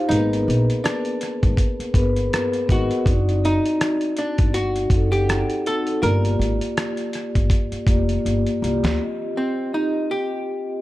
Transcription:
0.00 0.13 D#4 medium
0.00 0.12 G4 medium
0.00 0.13 C5 medium
0.00 0.12 F5 medium
0.09 0.43 G#1 medium
0.09 0.17 A#3 medium
0.09 0.84 D#4 medium
0.09 1.47 G#4 medium
0.09 1.48 A#4 medium
0.09 1.49 B4 medium
0.09 closed hi-hat medium
0.15 1.50 B3 medium
0.33 closed hi-hat soft
0.48 0.66 A#1 medium
0.48 closed hi-hat medium
0.70 closed hi-hat medium
0.84 2.28 D4 medium
0.84 cross-stick loud
0.84 closed hi-hat medium
1.05 closed hi-hat soft
1.21 cross-stick soft
1.21 closed hi-hat medium
1.43 1.57 G#1 medium
1.43 kick medium
1.43 closed hi-hat soft
1.57 kick medium
1.57 closed hi-hat medium
1.79 muted upright bass stroke medium
1.79 closed hi-hat soft
1.94 2.27 G1 medium
1.94 2.63 B3 medium
1.94 2.64 G#4 medium
1.94 2.64 A#4 medium
1.94 2.65 B4 medium
1.94 kick loud
1.94 closed hi-hat medium
2.16 closed hi-hat soft
2.33 cross-stick loud
2.33 closed hi-hat medium
2.53 closed hi-hat soft
2.67 2.88 G#1 medium
2.67 3.03 B3 medium
2.67 3.03 G#4 medium
2.67 3.04 A#4 medium
2.67 3.04 D#5 loud
2.67 kick medium
2.67 closed hi-hat medium
2.72 3.41 F#4 medium
2.91 closed hi-hat soft
3.06 3.57 F#1 loud
3.06 4.44 C4 medium
3.06 4.45 D#4 medium
3.06 4.45 F#4 medium
3.06 4.46 D5 medium
3.06 kick loud
3.06 closed hi-hat medium
3.29 closed hi-hat soft
3.45 4.15 D#4 medium
3.45 closed hi-hat medium
3.66 closed hi-hat medium
3.81 cross-stick loud
3.81 closed hi-hat medium
4.01 closed hi-hat soft
4.17 4.53 D4 medium
4.17 closed hi-hat medium
4.38 4.85 G1 medium
4.38 kick medium
4.38 closed hi-hat medium
4.54 5.08 F#4 medium
4.54 closed hi-hat medium
4.76 closed hi-hat soft
4.90 5.41 F#1 medium
4.90 5.61 C4 medium
4.90 5.62 D#4 medium
4.90 kick loud
4.90 closed hi-hat medium
4.95 5.63 A4 medium
4.95 5.62 F#5 medium
5.12 5.67 G4 loud
5.12 closed hi-hat soft
5.29 cross-stick loud
5.29 closed hi-hat medium
5.50 closed hi-hat soft
5.66 6.01 C4 medium
5.66 6.02 D#4 medium
5.66 6.02 F#4 medium
5.66 6.02 A4 loud
5.66 6.03 A4 medium
5.66 closed hi-hat medium
5.87 closed hi-hat soft
6.02 6.35 G1 loud
6.02 7.40 A#3 medium
6.02 7.41 F4 medium
6.02 7.41 G4 medium
6.02 8.21 A#4 loud
6.02 7.42 D5 medium
6.02 closed hi-hat medium
6.25 closed hi-hat soft
6.39 6.58 G#1 medium
6.39 closed hi-hat medium
6.61 closed hi-hat medium
6.77 cross-stick loud
6.77 closed hi-hat medium
6.97 closed hi-hat soft
7.13 cross-stick soft
7.13 closed hi-hat medium
7.35 7.50 G1 medium
7.35 kick medium
7.35 closed hi-hat soft
7.50 kick medium
7.50 closed hi-hat medium
7.72 muted upright bass stroke soft
7.72 closed hi-hat soft
7.87 8.20 F1 medium
7.87 8.57 A#3 medium
7.87 8.57 F4 medium
7.87 8.58 G4 medium
7.87 kick loud
7.87 closed hi-hat medium
7.91 8.58 D5 medium
8.09 closed hi-hat soft
8.25 8.43 G1 medium
8.25 closed hi-hat medium
8.47 closed hi-hat soft
8.62 8.80 C2 medium
8.62 8.97 A#3 medium
8.62 8.97 F4 medium
8.62 8.98 G4 medium
8.62 8.98 D5 medium
8.62 closed hi-hat medium
8.83 8.98 D2 medium
8.83 snare medium
8.83 closed hi-hat soft
9.00 9.68 C4 medium
9.00 9.69 F4 medium
9.00 9.69 G4 medium
9.00 9.70 D#5 medium
9.37 9.74 C4 medium
9.73 10.81 C4 medium
9.73 10.12 D#4 medium
9.73 10.81 F4 medium
9.73 10.81 G4 medium
9.73 10.81 D#5 medium
10.11 10.81 G4 medium

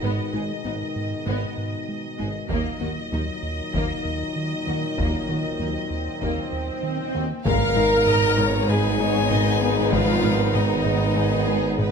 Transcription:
0.00 0.15 G#1 medium
0.00 0.11 G#1 medium
0.00 0.21 G#2 medium
0.00 0.11 G#2 medium
0.00 2.47 B2 soft
0.00 2.47 D#3 soft
0.00 2.47 G#3 soft
0.00 0.21 G#3 medium
0.00 0.32 B3 medium
0.00 2.47 D#4 soft
0.00 2.47 D#5 soft
0.33 0.46 G#1 soft
0.33 0.43 G#1 soft
0.33 0.42 G#2 soft
0.33 0.53 G#3 medium
0.33 0.42 B3 soft
0.33 0.52 D#4 medium
0.33 0.41 G#4 soft
0.65 0.77 G#1 soft
0.65 0.73 G#1 soft
0.65 0.73 G#2 soft
0.65 0.84 G#2 soft
0.65 0.83 B3 soft
0.65 0.73 B3 soft
0.65 0.73 D#4 soft
0.96 1.15 G#2 medium
1.26 1.39 G#1 medium
1.26 1.35 G#1 medium
1.26 1.35 G#2 medium
1.26 1.45 G#2 medium
1.26 1.45 G#3 medium
1.26 1.55 B3 medium
1.58 1.76 G#2 medium
1.89 2.07 G#3 medium
2.19 2.32 G#1 soft
2.19 2.28 G#1 soft
2.19 2.28 G#2 soft
2.19 2.38 G#3 medium
2.19 2.27 B3 medium
2.19 2.38 D#4 medium
2.19 2.27 G#4 soft
2.49 2.62 D#2 medium
2.49 2.69 D#2 medium
2.49 2.59 D#2 medium
2.49 7.10 A#2 medium
2.49 2.69 D#3 medium
2.49 7.11 D#3 medium
2.49 7.10 F#3 medium
2.49 2.79 A#3 medium
2.49 7.10 D#4 medium
2.49 7.21 D#5 medium
2.49 taiko medium
2.81 2.93 D#2 soft
2.81 2.90 D#2 soft
2.81 3.00 D#3 medium
2.81 2.89 A#3 soft
2.81 3.00 A#3 medium
2.81 2.89 F#4 soft
3.12 3.24 D#2 soft
3.12 3.31 D#2 medium
3.12 3.21 D#2 soft
3.12 3.31 F#3 medium
3.12 3.20 A#3 soft
3.12 3.20 D#4 soft
3.43 3.62 D#2 medium
3.74 3.86 D#2 medium
3.74 3.93 D#2 medium
3.74 3.83 D#2 medium
3.74 3.92 D#3 medium
3.74 4.03 A#3 medium
3.74 taiko medium
4.05 4.24 D#2 soft
4.36 4.55 D#3 soft
4.67 4.79 D#2 soft
4.67 4.75 D#2 soft
4.67 4.76 D#2 soft
4.67 4.85 D#3 soft
4.67 4.86 A#3 medium
4.67 4.75 A#3 soft
4.67 4.76 F#4 soft
4.98 5.16 D#2 medium
4.98 5.06 D#2 soft
4.98 5.11 D#2 soft
4.98 5.16 D#3 medium
4.98 5.27 A#3 soft
4.98 5.28 A#3 soft
4.98 taiko medium
4.98 swell soft
5.29 5.37 D#2 soft
5.29 5.41 D#2 soft
5.29 5.37 D#2 soft
5.29 5.47 D#3 soft
5.29 5.47 A#3 medium
5.29 5.37 A#3 soft
5.29 5.37 F#4 soft
5.59 5.78 D#2 medium
5.59 5.68 D#2 soft
5.59 5.72 D#2 soft
5.59 5.68 D#2 soft
5.59 5.78 F#3 soft
5.59 5.68 A#3 soft
5.59 5.69 D#4 soft
5.90 6.09 D#2 medium
6.21 6.40 D#2 medium
6.21 6.30 D#2 soft
6.21 6.34 D#2 soft
6.21 6.30 D#2 soft
6.21 6.40 D#3 medium
6.21 6.51 A#3 soft
6.21 taiko medium
6.53 6.71 D#2 medium
6.83 7.02 D#3 soft
7.15 7.23 D#2 soft
7.15 7.27 D#2 soft
7.15 7.23 D#2 soft
7.15 7.33 D#3 medium
7.15 7.33 A#3 medium
7.15 7.24 A#3 soft
7.15 7.23 F#4 soft
7.45 11.91 G#1 medium
7.45 7.64 G#2 loud
7.45 11.91 G#2 medium
7.45 11.91 D#3 medium
7.45 7.64 G#3 loud
7.45 11.91 B3 medium
7.45 11.91 D#4 medium
7.45 8.66 A#4 loud
7.45 8.04 F5 loud
7.45 8.71 A#5 loud
7.45 taiko loud
7.45 impact medium
7.76 7.94 G#3 medium
7.76 7.95 D#4 medium
7.76 taiko mid medium
8.07 8.25 G#2 medium
8.07 8.26 G#4 medium
8.07 8.39 D#5 medium
8.07 taiko mid medium
8.38 8.56 G#3 medium
8.38 8.57 D#4 medium
8.38 8.70 C#5 medium
8.38 taiko mid medium
8.69 8.87 G#2 medium
8.69 8.88 G#3 loud
8.69 9.93 G#3 medium
8.69 9.93 G#4 medium
8.69 9.00 B4 medium
8.69 9.92 G#5 loud
9.00 9.19 G#3 medium
9.00 9.18 D#4 medium
9.00 9.31 C#5 medium
9.31 9.49 G#2 medium
9.31 9.50 G#4 medium
9.31 9.62 D#5 medium
9.31 taiko mid medium
9.62 9.81 G#2 medium
9.62 9.80 B3 medium
9.62 10.53 B4 medium
9.92 10.11 G#2 medium
9.92 10.55 F3 loud
9.92 10.11 G#3 medium
9.92 10.55 F4 medium
9.92 10.56 F5 loud
9.92 taiko medium
10.23 10.43 G#3 medium
10.23 10.42 D#4 medium
10.23 taiko mid medium
10.53 10.74 G#2 medium
10.53 11.91 D#3 medium
10.53 11.91 D#4 medium
10.53 10.72 G#4 medium
10.53 11.17 A#4 medium
10.53 11.91 D#5 medium
10.53 taiko mid medium
10.84 11.05 G#3 medium
10.84 11.03 D#4 medium
10.84 taiko mid medium
11.16 11.35 G#2 medium
11.16 11.35 G#3 loud
11.16 11.79 G#4 medium
11.47 11.66 G#3 medium
11.47 11.66 D#4 medium
11.78 11.91 G#2 medium
11.78 11.91 G#4 medium
11.78 11.91 B4 medium
11.78 taiko mid medium

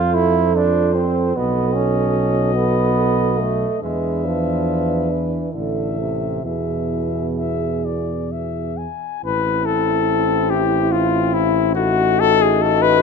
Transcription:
0.00 1.32 F2 medium
0.00 0.16 F4 loud
0.00 1.33 F4 medium
0.00 1.33 A4 medium
0.00 0.52 C5 medium
0.14 0.57 E4 loud
0.55 0.94 D4 medium
0.55 1.38 C5 medium
0.95 1.37 C4 medium
1.35 3.66 B1 medium
1.35 1.76 B3 medium
1.35 3.65 F#4 medium
1.35 3.79 A4 medium
1.35 3.83 D#5 medium
1.75 2.57 C#4 medium
2.56 3.41 B3 loud
3.40 3.81 A3 medium
3.82 5.50 E2 medium
3.82 4.26 G#3 medium
3.82 5.54 D4 medium
3.82 5.50 B4 medium
3.82 5.38 E5 medium
4.25 5.11 F3 medium
5.10 5.54 E3 medium
5.53 6.43 A1 medium
5.53 6.00 D3 medium
5.53 6.43 E4 soft
5.53 6.44 A4 soft
5.53 6.43 E5 soft
5.99 6.46 C3 medium
6.44 8.86 E2 medium
6.44 8.78 B2 medium
6.44 8.85 E4 soft
6.44 8.86 G#4 soft
6.44 7.28 E5 soft
7.37 7.87 E5 medium
7.85 8.33 D5 soft
8.32 8.79 E5 soft
8.77 9.23 G#5 medium
9.22 13.02 A1 medium
9.22 11.78 C4 medium
9.22 11.73 E4 medium
9.22 9.67 B4 medium
9.65 10.51 A4 medium
10.50 10.94 G4 loud
10.92 11.35 F4 medium
11.34 11.75 E4 loud
11.75 13.02 A3 medium
11.75 13.02 D#4 medium
11.75 12.21 F#4 loud
11.75 13.02 F#4 medium
12.20 12.43 A4 loud
12.42 12.63 G#4 loud
12.62 12.84 A4 loud
12.82 13.02 B4 loud

